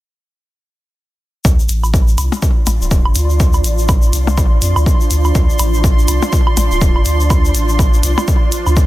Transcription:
1.45 1.57 D2 loud
1.45 8.86 D4 medium
1.45 8.86 F4 medium
1.45 kick loud
1.45 shaker soft
1.59 shaker soft
1.65 2.15 A1 medium
1.65 8.86 D5 medium
1.65 closed hi-hat medium
1.65 shaker medium
1.76 8.86 C6 medium
1.83 low woodblock soft
1.83 shaker soft
1.94 kick loud
1.94 shaker soft
2.08 shaker soft
2.18 2.30 C2 loud
2.18 closed hi-hat medium
2.18 low woodblock medium
2.18 shaker medium
2.32 percussion blips medium
2.32 shaker soft
2.42 kick loud
2.42 shaker soft
2.67 2.79 A1 medium
2.67 closed hi-hat medium
2.67 percussion blips medium
2.67 low woodblock soft
2.67 shaker medium
2.81 3.07 D1 loud
2.81 shaker soft
2.91 kick loud
2.91 shaker soft
3.05 3.14 A1 medium
3.05 low woodblock medium
3.15 3.62 D2 medium
3.15 closed hi-hat medium
3.15 shaker medium
3.30 shaker soft
3.40 kick loud
3.40 shaker soft
3.53 low woodblock soft
3.53 shaker soft
3.64 4.10 A1 medium
3.64 closed hi-hat medium
3.64 shaker medium
3.78 shaker soft
3.89 kick loud
3.89 low woodblock medium
3.89 shaker soft
4.02 shaker soft
4.13 4.39 C2 medium
4.13 closed hi-hat medium
4.13 shaker medium
4.27 percussion blips medium
4.27 shaker soft
4.38 4.58 A1 medium
4.38 kick loud
4.38 low woodblock soft
4.38 shaker soft
4.62 4.74 F2 medium
4.62 closed hi-hat medium
4.62 shaker loud
4.76 4.85 D2 loud
4.76 low woodblock medium
4.76 shaker soft
4.86 kick loud
4.86 shaker soft
5.01 shaker soft
5.11 5.32 D2 medium
5.11 closed hi-hat medium
5.11 shaker medium
5.24 low woodblock soft
5.24 shaker soft
5.35 5.47 D2 loud
5.35 kick loud
5.35 shaker soft
5.50 shaker soft
5.59 6.06 A1 medium
5.59 closed hi-hat medium
5.59 low woodblock medium
5.59 shaker medium
5.74 shaker soft
5.84 kick loud
5.84 shaker medium
5.99 shaker soft
6.08 6.20 C2 medium
6.08 closed hi-hat medium
6.08 low woodblock soft
6.08 shaker loud
6.22 percussion blips medium
6.22 shaker soft
6.32 kick loud
6.32 shaker medium
6.47 low woodblock medium
6.57 6.69 A1 medium
6.57 closed hi-hat medium
6.57 percussion blips medium
6.57 shaker medium
6.71 6.97 D1 loud
6.71 shaker soft
6.81 kick loud
6.81 shaker medium
6.96 7.04 A1 medium
6.96 low woodblock soft
7.06 7.52 D2 medium
7.06 closed hi-hat medium
7.06 shaker loud
7.20 shaker soft
7.30 kick loud
7.30 low woodblock medium
7.30 shaker soft
7.45 shaker soft
7.55 8.01 A1 medium
7.55 closed hi-hat medium
7.55 shaker medium
7.69 shaker soft
7.79 kick loud
7.79 low woodblock soft
7.79 shaker medium
7.94 shaker soft
8.03 8.15 C2 medium
8.03 closed hi-hat medium
8.03 shaker medium
8.18 percussion blips medium
8.18 low woodblock medium
8.18 shaker soft
8.28 kick loud
8.28 shaker medium
8.52 closed hi-hat medium
8.52 shaker medium
8.66 8.86 D2 medium
8.66 low woodblock soft
8.66 shaker soft
8.77 kick loud
8.77 shaker soft

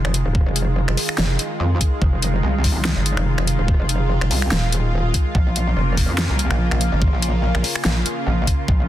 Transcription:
0.00 5.31 D#3 medium
0.00 5.31 G#3 medium
0.00 8.88 F4 loud
0.05 0.24 F1 medium
0.05 finger snap medium
0.14 closed hi-hat medium
0.26 0.45 D#1 medium
0.35 kick loud
0.46 0.86 F1 loud
0.56 closed hi-hat medium
0.88 0.96 F1 loud
0.88 finger snap soft
0.97 open hi-hat medium
1.09 finger snap medium
1.18 1.38 F1 loud
1.18 snare loud
1.39 closed hi-hat medium
1.60 1.79 F2 loud
1.81 kick medium
1.81 closed hi-hat medium
2.02 2.42 F1 loud
2.02 kick loud
2.22 closed hi-hat medium
2.43 2.74 C2 loud
2.64 kick medium
2.64 open hi-hat medium
2.76 2.95 C2 loud
2.85 snare loud
2.96 3.15 G1 loud
3.06 closed hi-hat medium
3.17 3.36 F1 medium
3.17 finger snap medium
3.38 3.57 F1 loud
3.38 finger snap soft
3.47 closed hi-hat medium
3.59 3.78 D#1 loud
3.68 kick loud
3.80 4.20 F1 loud
3.89 closed hi-hat medium
4.21 4.29 F1 loud
4.21 finger snap medium
4.31 4.50 C2 loud
4.31 open hi-hat medium
4.42 finger snap medium
4.52 5.13 D#1 medium
4.52 snare loud
4.72 closed hi-hat medium
5.14 kick medium
5.14 closed hi-hat medium
5.35 5.75 A#1 loud
5.35 8.88 C#3 medium
5.35 8.65 A#3 medium
5.35 kick loud
5.56 closed hi-hat medium
5.77 6.07 F1 loud
5.97 kick medium
5.97 open hi-hat medium
6.09 6.28 F2 loud
6.18 snare loud
6.30 6.49 C2 loud
6.39 closed hi-hat medium
6.51 6.70 A#1 loud
6.51 finger snap medium
6.71 6.90 A#1 loud
6.71 finger snap medium
6.81 closed hi-hat medium
6.92 7.11 G#1 medium
7.02 kick loud
7.13 7.53 A#1 loud
7.22 closed hi-hat medium
7.55 7.63 A#1 loud
7.55 finger snap medium
7.64 open hi-hat medium
7.76 finger snap medium
7.85 8.04 A#1 loud
7.85 snare loud
8.06 closed hi-hat medium
8.27 8.46 A#1 medium
8.47 kick medium
8.47 closed hi-hat medium
8.68 8.88 A#1 medium
8.68 8.88 C4 medium
8.68 kick loud

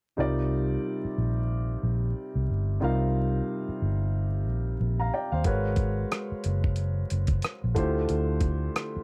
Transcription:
0.17 0.76 C2 medium
0.17 2.77 C3 medium
0.17 2.78 G3 medium
0.17 2.78 D#4 medium
0.17 2.78 F4 medium
0.17 2.79 A#4 soft
0.17 2.79 D5 medium
1.05 muted fingered electric bass stroke soft
1.18 1.76 A#1 medium
1.83 2.12 A#1 medium
2.35 2.47 C2 medium
2.50 2.78 G1 medium
2.80 3.40 C2 medium
2.80 5.41 C3 medium
2.80 5.41 G3 medium
2.80 5.41 D#4 medium
2.80 5.42 F4 medium
2.80 5.42 A#4 medium
2.80 4.44 F5 medium
3.69 muted fingered electric bass stroke soft
3.82 4.47 G1 medium
4.47 4.76 A#1 medium
4.80 5.09 A#1 medium
4.99 5.13 F5 soft
4.99 5.12 A#5 medium
5.13 5.32 D5 soft
5.13 5.31 G5 medium
5.32 5.44 D#2 medium
5.32 5.64 C5 soft
5.32 5.63 F5 medium
5.44 6.03 G#1 medium
5.44 7.72 G#3 medium
5.44 7.72 F#4 medium
5.44 7.72 A#4 medium
5.44 7.73 B4 medium
5.44 7.73 C#5 medium
5.44 kick medium
5.44 closed hi-hat medium
5.76 kick medium
5.76 closed hi-hat medium
6.12 cross-stick medium
6.12 closed hi-hat medium
6.32 muted fingered electric bass stroke soft
6.44 7.03 F#1 medium
6.44 closed hi-hat medium
6.64 kick medium
6.76 closed hi-hat medium
7.10 7.40 F#1 medium
7.10 closed hi-hat medium
7.27 kick medium
7.27 closed hi-hat soft
7.42 cross-stick medium
7.42 closed hi-hat medium
7.64 7.75 A#1 medium
7.74 8.05 D2 medium
7.74 9.03 D3 medium
7.74 9.03 A3 medium
7.74 9.03 E4 medium
7.74 9.03 F4 medium
7.74 9.03 G4 medium
7.74 9.03 C5 medium
7.74 kick loud
7.74 closed hi-hat medium
8.09 8.68 D2 medium
8.09 closed hi-hat medium
8.41 kick medium
8.41 closed hi-hat soft
8.76 cross-stick medium
8.76 closed hi-hat medium
8.96 muted fingered electric bass stroke soft

